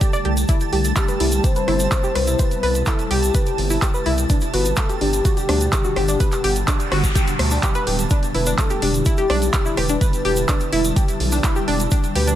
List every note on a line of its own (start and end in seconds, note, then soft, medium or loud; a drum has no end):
0.00 0.45 D3 medium
0.00 4.26 G3 medium
0.00 0.45 A3 medium
0.00 0.45 G4 medium
0.00 0.10 G4 medium
0.00 8.09 A5 medium
0.00 kick loud
0.00 closed hi-hat medium
0.00 shaker medium
0.13 0.16 D5 loud
0.13 shaker soft
0.25 0.45 C2 medium
0.25 0.31 G4 medium
0.25 closed hi-hat soft
0.37 closed hi-hat soft
0.37 shaker medium
0.48 11.88 B2 medium
0.48 4.26 C3 medium
0.48 4.26 E4 medium
0.48 0.54 E4 medium
0.48 kick loud
0.48 closed hi-hat medium
0.48 shaker medium
0.60 closed hi-hat soft
0.60 shaker soft
0.73 0.92 C2 medium
0.73 0.76 G4 medium
0.73 open hi-hat medium
0.85 closed hi-hat soft
0.85 shaker medium
0.96 1.46 G4 loud
0.96 kick loud
0.96 clap loud
0.96 closed hi-hat medium
0.96 shaker medium
1.08 1.17 B4 medium
1.08 closed hi-hat soft
1.08 shaker soft
1.20 1.40 C2 loud
1.20 1.26 E4 medium
1.20 open hi-hat loud
1.32 closed hi-hat soft
1.32 shaker medium
1.44 1.50 G4 medium
1.44 2.41 C5 loud
1.44 kick loud
1.44 closed hi-hat medium
1.44 shaker medium
1.56 1.64 B4 medium
1.56 closed hi-hat soft
1.56 shaker soft
1.68 1.87 G1 loud
1.68 1.73 E4 loud
1.68 cross-stick medium
1.68 open hi-hat medium
1.80 closed hi-hat soft
1.80 shaker medium
1.92 kick loud
1.92 clap loud
1.92 closed hi-hat medium
1.92 shaker medium
2.04 2.09 G4 medium
2.04 shaker soft
2.15 2.35 C2 medium
2.15 2.21 B4 medium
2.15 cross-stick medium
2.15 open hi-hat loud
2.27 2.33 E4 medium
2.27 closed hi-hat soft
2.27 shaker medium
2.39 2.88 B4 loud
2.39 2.43 C5 medium
2.39 kick loud
2.39 closed hi-hat medium
2.39 shaker medium
2.51 closed hi-hat soft
2.51 shaker soft
2.63 2.83 C2 medium
2.63 2.69 B4 loud
2.63 open hi-hat medium
2.75 closed hi-hat soft
2.75 shaker medium
2.86 2.92 E4 medium
2.86 3.12 A4 medium
2.86 kick loud
2.86 clap loud
2.86 closed hi-hat medium
2.86 shaker medium
2.99 closed hi-hat soft
2.99 shaker soft
3.11 3.30 C2 loud
3.11 3.16 G4 loud
3.11 4.06 G4 medium
3.11 open hi-hat medium
3.23 closed hi-hat soft
3.23 shaker medium
3.34 3.40 B4 medium
3.34 kick loud
3.34 closed hi-hat medium
3.34 shaker medium
3.46 closed hi-hat soft
3.46 shaker soft
3.58 3.78 G1 loud
3.58 open hi-hat medium
3.70 3.76 E4 medium
3.70 open hi-hat medium
3.70 shaker medium
3.82 3.88 G4 medium
3.82 kick loud
3.82 clap loud
3.82 closed hi-hat medium
3.82 shaker medium
3.94 4.00 B4 medium
3.94 shaker soft
4.06 4.26 C2 loud
4.06 4.12 E4 loud
4.06 open hi-hat medium
4.18 closed hi-hat soft
4.18 shaker medium
4.30 12.35 D3 medium
4.30 12.35 G3 medium
4.30 4.35 D4 medium
4.30 8.07 F#5 medium
4.30 kick loud
4.30 closed hi-hat medium
4.30 shaker medium
4.41 closed hi-hat soft
4.41 shaker soft
4.54 4.73 G1 medium
4.54 4.57 F#4 medium
4.54 4.79 B4 loud
4.54 open hi-hat medium
4.65 closed hi-hat soft
4.65 shaker medium
4.76 5.01 A4 loud
4.76 kick loud
4.76 clap loud
4.76 closed hi-hat medium
4.76 shaker medium
4.89 4.98 G4 medium
4.89 closed hi-hat soft
4.89 shaker soft
5.01 5.21 G1 loud
5.01 5.07 D4 medium
5.01 7.59 G4 loud
5.01 open hi-hat loud
5.13 closed hi-hat soft
5.13 shaker medium
5.25 5.31 F#4 medium
5.25 kick loud
5.25 closed hi-hat medium
5.25 shaker medium
5.37 5.45 G4 medium
5.37 closed hi-hat soft
5.37 shaker soft
5.49 5.68 D2 loud
5.49 5.54 D4 loud
5.49 cross-stick medium
5.49 open hi-hat medium
5.61 closed hi-hat soft
5.61 shaker medium
5.73 kick loud
5.73 clap loud
5.73 closed hi-hat medium
5.73 shaker medium
5.84 5.90 F#4 medium
5.84 shaker soft
5.96 6.16 G1 loud
5.96 6.02 G4 medium
5.96 cross-stick medium
5.96 open hi-hat medium
6.08 6.14 D4 medium
6.08 closed hi-hat soft
6.08 shaker medium
6.20 6.24 B4 medium
6.20 kick loud
6.20 closed hi-hat medium
6.20 noise sweep medium
6.20 shaker medium
6.32 clap soft
6.32 closed hi-hat soft
6.32 shaker soft
6.44 6.64 G1 medium
6.44 6.50 G4 loud
6.44 open hi-hat medium
6.56 closed hi-hat soft
6.56 shaker medium
6.68 6.73 D4 medium
6.68 kick loud
6.68 clap loud
6.68 closed hi-hat medium
6.68 shaker medium
6.80 closed hi-hat soft
6.80 shaker soft
6.92 7.11 G1 loud
6.92 6.97 F#4 loud
6.92 cross-stick medium
6.92 open hi-hat medium
7.04 kick medium
7.04 closed hi-hat soft
7.04 shaker medium
7.15 7.21 G4 medium
7.15 kick loud
7.15 closed hi-hat medium
7.15 shaker medium
7.27 closed hi-hat soft
7.27 shaker soft
7.39 7.59 D2 loud
7.39 cross-stick medium
7.39 open hi-hat medium
7.51 7.57 D4 medium
7.51 open hi-hat medium
7.51 shaker medium
7.63 7.69 G4 medium
7.63 kick loud
7.63 clap loud
7.63 closed hi-hat medium
7.63 shaker medium
7.75 7.83 B4 loud
7.75 closed hi-hat soft
7.75 shaker soft
7.87 8.07 D1 medium
7.87 7.92 G4 medium
7.87 open hi-hat loud
7.99 closed hi-hat soft
7.99 shaker medium
8.10 8.16 D4 medium
8.10 11.88 E4 medium
8.10 12.35 A5 medium
8.10 kick loud
8.10 closed hi-hat medium
8.10 shaker medium
8.23 closed hi-hat soft
8.23 shaker soft
8.35 8.54 E1 medium
8.35 8.38 E4 medium
8.35 8.57 B4 loud
8.35 open hi-hat medium
8.46 8.50 D4 medium
8.46 closed hi-hat soft
8.46 shaker medium
8.58 8.84 A4 loud
8.58 kick loud
8.58 clap loud
8.58 closed hi-hat medium
8.58 shaker medium
8.70 8.79 G4 medium
8.70 closed hi-hat soft
8.70 shaker soft
8.82 9.02 E1 loud
8.82 8.88 D4 medium
8.82 9.05 G4 medium
8.82 open hi-hat loud
8.94 closed hi-hat soft
8.94 shaker medium
9.05 9.12 E4 medium
9.05 9.79 G4 loud
9.05 kick loud
9.05 closed hi-hat medium
9.05 shaker medium
9.17 9.26 G4 medium
9.17 closed hi-hat soft
9.17 shaker soft
9.30 9.49 B1 loud
9.30 9.35 D4 loud
9.30 cross-stick medium
9.30 open hi-hat loud
9.42 closed hi-hat soft
9.42 shaker medium
9.53 kick loud
9.53 clap loud
9.53 closed hi-hat medium
9.53 shaker medium
9.66 9.71 E4 medium
9.66 shaker soft
9.77 9.97 E1 loud
9.77 9.83 G4 medium
9.77 11.20 B4 loud
9.77 cross-stick medium
9.77 open hi-hat loud
9.89 9.95 D4 medium
9.89 closed hi-hat soft
9.89 shaker medium
10.01 10.05 B4 medium
10.01 kick loud
10.01 closed hi-hat medium
10.01 shaker medium
10.13 closed hi-hat soft
10.13 shaker soft
10.25 10.45 E1 medium
10.25 10.31 G4 loud
10.25 open hi-hat loud
10.36 closed hi-hat soft
10.36 shaker medium
10.48 10.54 D4 medium
10.48 kick loud
10.48 clap loud
10.48 closed hi-hat medium
10.48 shaker medium
10.60 closed hi-hat soft
10.60 shaker soft
10.73 10.92 E1 loud
10.73 10.78 E4 loud
10.73 open hi-hat loud
10.85 closed hi-hat soft
10.85 shaker medium
10.96 11.02 G4 medium
10.96 kick loud
10.96 closed hi-hat medium
10.96 shaker medium
11.08 closed hi-hat soft
11.08 shaker soft
11.20 11.40 B1 loud
11.20 open hi-hat loud
11.32 11.38 D4 medium
11.32 open hi-hat medium
11.32 shaker medium
11.44 11.50 E4 medium
11.44 kick loud
11.44 clap loud
11.44 closed hi-hat medium
11.44 shaker medium
11.56 11.62 G4 medium
11.56 shaker soft
11.68 11.87 E1 medium
11.68 11.73 D4 loud
11.68 open hi-hat loud
11.80 closed hi-hat soft
11.80 shaker medium
11.91 12.35 A3 medium
11.91 11.97 D4 medium
11.91 12.35 G4 medium
11.91 kick loud
11.91 closed hi-hat medium
11.91 shaker medium
12.04 closed hi-hat soft
12.04 shaker soft
12.15 12.35 D2 medium
12.15 12.19 G4 medium
12.15 12.35 B4 loud
12.15 open hi-hat loud
12.27 12.31 D4 medium
12.27 closed hi-hat soft
12.27 shaker medium